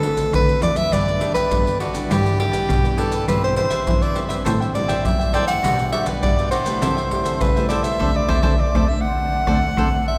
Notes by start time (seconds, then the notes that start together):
Already playing: D3 A4
0.02 A3 C4 F#4, pandeiro
0.17 pandeiro, maracas, surdo
0.33 A2 D3 B4, pandeiro, maracas, surdo
0.48 A3 C4 F#4, pandeiro, maracas
0.62 E2 D5, pandeiro, maracas
0.76 F#2 E5, pandeiro, maracas
0.92 G2 G3 B3 D4 G4 B4 D5, pandeiro, maracas, surdo
1.08 muted cavaquinho stroke, pandeiro, maracas
1.20 D4 G4 B4 D5, pandeiro
1.34 G4 B4 D5, pandeiro, maracas, surdo
1.51 G2 D3 G3 B3 D4, pandeiro, maracas, surdo
1.66 G4 B4 D5, pandeiro, maracas, surdo
1.80 D4 F#4 G4 B4 D5, pandeiro
1.93 E3 B3 D4 G4 B4 D5, pandeiro, maracas, surdo
2.10 G2 E4 G4 B4 D5, pandeiro, maracas, surdo
2.25 G4 B4 D5, pandeiro, maracas
2.38 E3 B3 D4 G4, muted cavaquinho stroke, pandeiro
2.52 G4 B4 D5, pandeiro, maracas, surdo
2.69 G2 B2, pandeiro, maracas, surdo
2.84 E3 B3 D4 G4 B4 D5, pandeiro, maracas
2.97 E4 G4 A4 B4 D5, pandeiro
3.11 G4 B4 D5, pandeiro, maracas
3.28 G2 E3 B3 C4 G4 B4 C5 E5, pandeiro, maracas, surdo
3.44 C5, muted cavaquinho stroke, pandeiro, maracas
3.56 G4 B4 C5 E5, pandeiro
3.70 B4 C5 E5, pandeiro, maracas, surdo
3.87 G2 E3 B3 C4, pandeiro, maracas, surdo
4.01 B4 C5 D5 E5, pandeiro, maracas, surdo
4.15 G4 B4 C5 E5, pandeiro
4.29 G3 C4 E4 B4 C5 E5, pandeiro, maracas, surdo
4.45 A2 A4 C5 E5 G5, pandeiro, maracas, surdo
4.60 C5 E5 G5, pandeiro, maracas
4.74 G3 C4 E4 D5, muted cavaquinho stroke, pandeiro
4.88 C5 E5 G5, pandeiro, maracas, surdo
5.05 F#2 E3 E5, pandeiro, maracas, surdo
5.19 C4 E4 C5 E5 G5, pandeiro, maracas
5.33 A4 C5 D5 E5 G5, pandeiro
5.47 C5 E5 F#5 G5, pandeiro, maracas
5.63 B2 G3 D4 F#4 G4 B4 D5, pandeiro, maracas, surdo
5.79 muted cavaquinho stroke, pandeiro, maracas
5.92 F#4 G4 B4 D5 E5, pandeiro
6.06 G4 B4 D5, pandeiro, maracas, surdo
6.23 G2 B2 G3 D4 F#4 D5, pandeiro, maracas, surdo
6.38 G4 B4 D5, pandeiro, maracas, surdo
6.51 F#4 G4 B4 C5 D5, pandeiro, maracas
6.65 A3 E4 G4 B4 D5, pandeiro, maracas, surdo
6.81 C3 E4 A4 C5 E5, pandeiro, maracas, surdo
6.97 A4 C5 E5, pandeiro, maracas
7.10 A3 E4 G4, muted cavaquinho stroke, pandeiro, surdo
7.24 A4 C5 E5, pandeiro, maracas, surdo
7.41 C#3 G3 B4, pandeiro, maracas, surdo
7.56 A3 E4 G4 A4 C5 E5, pandeiro, maracas
7.69 E4 A4 C5 D5 E5, pandeiro, maracas
7.83 A4 C5 E5, pandeiro, maracas
7.99 D2 A3 C4 D4 A4 C5 D5, surdo
8.16 D5
8.28 D2 A3 C4 D4 A4 C5 D5 E5, surdo
8.43 D2 A3 C4 D4 A4 C5 D5, surdo
8.60 D5
8.74 D2 A3 C4 D4 A4 C5 D5, surdo
8.88 E5
9.01 F#5
9.47 D2 A3 C4 D4 A4 C5 D5, surdo
9.77 D2 A3 C4 D4 A4 C5 D5, surdo
10.08 E5